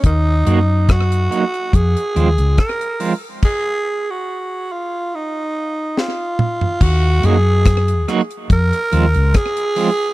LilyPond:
<<
  \new Staff \with { instrumentName = "Tenor saxophone" } { \time 4/4 \key ees \dorian \tempo 4 = 71 ees'4 ges'4 aes'4 bes'8. r16 | aes'8. ges'8. f'8 ees'4 f'4 | ges'8 aes'4 r8 bes'4 aes'4 | }
  \new Staff \with { instrumentName = "Clean electric guitar" } { \time 4/4 \key ees \dorian r8 <ges bes ees' ges'>8 r8 <ges bes ees' ges'>8 r8 <f aes c' f'>8 r8 <f aes c' f'>8 | r1 | r8 <ges bes ees' ges'>8 r8 <ges bes ees' ges'>8 r8 <f aes c' f'>8 r8 <f aes c' f'>8 | }
  \new Staff \with { instrumentName = "Fingered electric bass" } { \clef bass \time 4/4 \key ees \dorian ees,8 ges,4 r8 f,16 r16 ees,16 des,16 r4 | r1 | ees,8 ges,4 r8 f,16 r16 ees,16 des,16 r4 | }
  \new DrumStaff \with { instrumentName = "Drums" } \drummode { \time 4/4 <hh bd>8 hh8 <hh bd ss>16 hh16 hh16 hh16 <hh bd>16 hh16 hh16 hh16 <hh bd ss>16 hh16 hho8 | <cymc bd>4 r4 r4 sn8 toml16 tomfh16 | <cymc bd>8 hh8 <hh bd ss>16 hh16 <hh ss>16 hh16 <hh bd>16 hh16 hh16 hh16 <hh bd ss>16 hh16 hho8 | }
>>